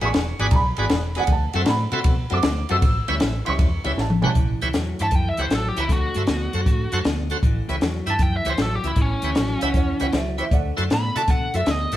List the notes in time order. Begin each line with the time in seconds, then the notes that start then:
0.01 A1 E3 B3 D4 F#4 G#4 B4 E5, ride
0.05 C#6
0.14 E1, snare, ride
0.39 G#1 E3 B3 D4 F#4 G#4 B4 D5, ride
0.51 B1 A#5, kick, ride
0.55 B5
0.77 G#1 E3 B3 D4 F#4 G#4 B4 D5, ride
0.89 E1, snare, ride
1.15 E3 B3 D4 F#4 G#4 B4 D5 F#5, snare, ride
1.27 D2, kick, ride
1.32 A5
1.53 F#2 D3 A3 C4 F#4 A4 C5 E5, ride
1.65 A2 A#5, snare, ride
1.69 B5
1.92 C3 D3 A3 C4 F#4 A4 C5 E5, ride
2.04 B2, kick, ride
2.30 F#2 D3 A3 C4 F#4 A4 C5 E5 D6, ride
2.43 D2, snare, ride
2.69 F#2 D3 A3 C4 F#4 A4 C5 E5 E6, ride
2.82 A1, kick, ride
3.08 D2 A2 G3 C#4 E4 G4 B4 C#5 E5, ride
3.20 A1, snare, ride
3.45 C#2 A2 G3 C#4 E4 G4 B4 C#5 E5 C6 C#6, ride
3.59 E2, kick, ride
3.84 C#2 A2 G3 C#4 E4 G4 B4 C#5 E5, ride
3.97 A1 A5, snare
4.10 mid tom
4.22 A2 G3 C#4 E4 G4 B4 C#5 F#5 G#5 A5, floor tom
4.35 A1 A2 E3, kick, closed hi-hat
4.61 C#2 A2 E3 G4 B4 C#5 E5, closed hi-hat
4.73 E2 A2 F#3, snare, closed hi-hat
4.99 G2 A2 E3 G4 B4 C#5 E5 A5, closed hi-hat
5.11 F#2 A2 E3, kick, closed hi-hat
5.15 G5
5.29 E5
5.37 C#2 A2 E3 G4 B4 C#5 F#5, closed hi-hat
5.42 C5
5.50 A1 A2 F#3, snare, closed hi-hat
5.55 A4
5.68 G4
5.76 C#2 A2 E3 E4 G4 B4 C#5 E5, closed hi-hat
5.89 D2 D3 A3, kick, closed hi-hat
5.93 F#4
6.14 G2 D3 A3 F#4 A4 C5 E5, closed hi-hat
6.27 D2 D3 B3, snare, closed hi-hat
6.52 F#2 D3 A3 F#4 A4 C5 F#5, closed hi-hat
6.66 A2 D3 A3, kick, closed hi-hat
6.92 F#2 D3 A3 F#4 A4 C5 F#5, closed hi-hat
7.04 D2 D3 B3, snare, closed hi-hat
7.30 D3 A3 F#4 A4 C5 F#5, closed hi-hat
7.43 A1 A2 E3, kick, closed hi-hat
7.68 C#2 A2 E3 E4 G4 B4 C#5, closed hi-hat
7.81 E2 A2 F#3, snare, closed hi-hat
8.06 G2 A2 E3 E4 G4 B4 E5 A5, closed hi-hat
8.19 F#2 A2 E3 G5, kick, closed hi-hat
8.37 E5
8.45 C#2 A2 E3 E4 G4 B4 C#5, closed hi-hat
8.50 C5
8.58 A1 A2 F#3, snare, closed hi-hat
8.62 A4
8.75 G4
8.83 C#2 A2 E3 E4 G4 B4 E5, closed hi-hat
8.87 E4
8.96 A1 A2 E3, kick, closed hi-hat
9.02 C#4
9.22 D2 A2 E3 E4 G4 B4 C#5, closed hi-hat
9.35 A1 A2 F#3, snare, closed hi-hat
9.58 A2 E3 E4 G4 F5, closed hi-hat
9.62 C#2 B4 C#5 E5 F#5
9.74 E2 A2 E3 C#5 F#5, kick, closed hi-hat
10.00 C#2 A2 E3 E4 G4 B4 C#5 F#5, closed hi-hat
10.12 C#2 A2 F#3 C5 E5, snare, closed hi-hat
10.38 A2 E3 E4 G4 B4 C5 C#5 E5, closed hi-hat
10.51 D2 D3 A3 D5 F#5, kick, closed hi-hat
10.77 F#2 D3 A3 E4 F#4 A4 C5, closed hi-hat
10.90 A2 D3 B3 B5, snare, closed hi-hat
11.15 C3 D3 A3 E4 F#4 A4 D5 A5, closed hi-hat
11.28 B2 D3 A3 F#5, kick, closed hi-hat
11.54 F#2 D3 A3 E4 F#4 A4 C5 E5, closed hi-hat
11.66 D2 D3 B3, snare, closed hi-hat
11.71 D#5
11.92 G#1 D3 A3 E4 F#4 A4, closed hi-hat